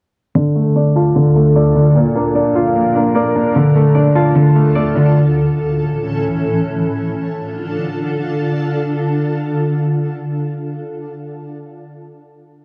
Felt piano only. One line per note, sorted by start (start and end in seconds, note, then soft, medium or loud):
0.35 1.14 D3 medium
0.56 1.34 A3 medium
0.76 1.74 D4 medium
0.96 1.96 F4 medium
1.16 1.96 D3 medium
1.36 1.54 A3 medium
1.56 1.96 A3 medium
1.76 1.96 D4 medium
1.95 2.74 A#2 loud
2.16 2.94 A#3 medium
2.35 3.34 D4 medium
2.56 3.56 F4 loud
2.76 3.56 A#2 medium
2.96 3.13 A#3 medium
3.15 3.55 A#3 loud
3.36 3.56 D4 medium
3.56 4.34 D3 medium
3.76 4.54 A3 medium
3.95 4.94 D4 medium
4.15 5.15 F4 loud
4.35 5.15 D3 medium
4.55 4.74 A3 medium
4.76 5.16 A3 medium
4.95 5.15 D4 medium